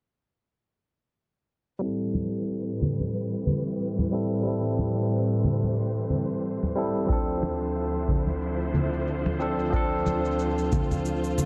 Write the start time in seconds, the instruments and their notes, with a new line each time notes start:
1.79 string section A2 E3 G3 C4 B4, tine electric piano G3 C4, shaker
1.83 tine electric piano E4 A4
2.15 high conga
2.82 low conga
3.00 high conga
3.47 low conga, shaker
3.98 high conga
4.11 tine electric piano G3 C4 E4 A4, shaker
4.43 tine electric piano G3 C4, string section C5, shaker
4.47 tine electric piano E4 A4
4.79 high conga, shaker
4.98 shaker
5.12 shaker
5.31 shaker
5.44 low conga, shaker
5.63 high conga, shaker
5.78 shaker
5.97 shaker
6.10 low conga, shaker
6.30 shaker
6.44 shaker
6.63 high conga
6.75 tine electric piano G3 C4 E4 A4, shaker
6.96 shaker
7.06 string section D2 D3 F3 E4, tine electric piano F3 C4 D4, kick, shaker
7.12 tine electric piano A4
7.43 high conga, shaker
7.61 shaker
7.76 shaker
7.94 shaker
8.08 kick, low conga, shaker
8.27 high conga, shaker
8.42 shaker
8.61 shaker
8.74 low conga, shaker
8.94 shaker
9.08 shaker
9.26 high conga
9.39 tine electric piano F3 C4 D4 A4, shaker
9.59 shaker
9.70 tine electric piano F3 C4, string section F4, kick, shaker
9.74 tine electric piano D4 A4
10.06 high conga, shaker
10.25 shaker
10.39 shaker
10.58 shaker
10.72 kick, low conga, shaker
10.91 high conga, low conga, shaker
11.05 shaker
11.24 shaker
11.38 low conga, shaker